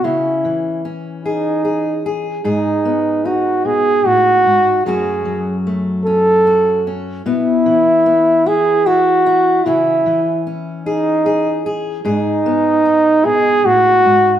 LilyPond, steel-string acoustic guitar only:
\new Staff \with { instrumentName = "Steel-string acoustic guitar" } { \time 6/8 \key cis \minor \tempo 4. = 50 << { cis'4 cis'8 gis'8 gis'8 gis'8 | gis'4 dis'2 | <fis a cis' fis'>4 a8 cis'8 fis'8 cis'8 | b4 b8 e'8 e'8 e'8 |
<e cis'>4 cis'8 gis'8 gis'8 gis'8 | gis'4 dis'2 | } \\ { cis8 e2~ e8 | gis,8 b4 b,8 a,8 gis,8 | fis,8 fis2~ fis8 | b,8 e2~ e8 |
cis8 e2~ e8 | gis,8 b4 b,8 a,8 gis,8 | } >> }